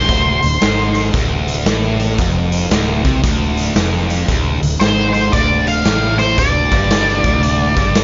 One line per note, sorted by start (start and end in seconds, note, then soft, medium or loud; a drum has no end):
0.00 1.10 C5 medium
0.00 snare soft
0.09 0.41 D1 medium
0.09 0.42 D2 loud
0.09 kick loud
0.09 closed hi-hat medium
0.42 0.61 D1 medium
0.42 0.58 D2 medium
0.42 closed hi-hat medium
0.61 1.11 G#1 medium
0.61 1.14 G#2 medium
0.61 snare loud
0.61 closed hi-hat medium
0.95 closed hi-hat medium
1.14 1.63 D1 medium
1.14 1.67 D2 loud
1.14 kick loud
1.14 closed hi-hat medium
1.48 closed hi-hat medium
1.66 2.15 A1 medium
1.66 2.19 A2 medium
1.66 snare medium
1.66 closed hi-hat medium
2.00 closed hi-hat medium
2.18 2.68 F1 medium
2.18 2.71 F2 loud
2.18 kick medium
2.18 closed hi-hat medium
2.52 closed hi-hat medium
2.71 3.03 D1 medium
2.71 3.04 D2 medium
2.71 snare loud
2.71 closed hi-hat medium
3.05 3.23 C2 medium
3.05 3.23 C3 loud
3.05 kick loud
3.05 closed hi-hat medium
3.23 3.72 D1 medium
3.23 3.75 D2 loud
3.23 kick loud
3.23 closed hi-hat medium
3.57 closed hi-hat medium
3.75 4.25 F1 medium
3.75 4.28 F2 loud
3.75 snare medium
3.75 closed hi-hat medium
4.10 closed hi-hat medium
4.28 4.60 D1 medium
4.28 4.61 D2 loud
4.28 kick medium
4.28 closed hi-hat medium
4.62 4.79 D1 medium
4.62 4.77 D2 medium
4.62 closed hi-hat medium
4.80 5.30 G#1 medium
4.80 5.33 G#2 medium
4.80 5.12 C5 medium
4.80 snare loud
4.80 closed hi-hat medium
5.13 5.33 C5 medium
5.13 closed hi-hat medium
5.32 5.82 D1 medium
5.32 5.85 D2 loud
5.32 5.64 D5 medium
5.32 kick loud
5.32 closed hi-hat medium
5.67 6.16 F5 loud
5.67 closed hi-hat medium
5.85 6.34 A1 medium
5.85 6.37 A2 medium
5.85 snare medium
5.85 closed hi-hat medium
6.19 6.36 C5 medium
6.19 closed hi-hat medium
6.38 6.70 D1 medium
6.38 6.72 D2 loud
6.38 8.04 D5 medium
6.38 kick loud
6.38 closed hi-hat medium
6.72 7.21 G1 medium
6.72 7.24 G2 loud
6.72 kick loud
6.72 closed hi-hat medium
6.91 snare loud
6.91 closed hi-hat medium
7.08 snare soft
7.24 7.73 D1 medium
7.24 7.76 D2 loud
7.24 kick medium
7.24 closed hi-hat medium
7.43 closed hi-hat medium
7.77 8.04 G1 medium
7.77 8.04 G2 medium
7.77 kick medium
7.77 closed hi-hat medium
7.95 snare medium
7.95 closed hi-hat medium